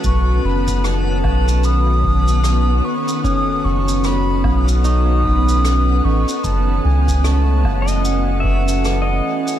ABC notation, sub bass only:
X:1
M:4/4
L:1/8
Q:"Swing 16ths" 1/4=75
K:Bmix
V:1 name="Sub bass" clef=bass
B,,, F,,,2 B,,,4 z | z F,,,2 B,,,4 A,,, | F,,, C,,2 F,,,4 z |]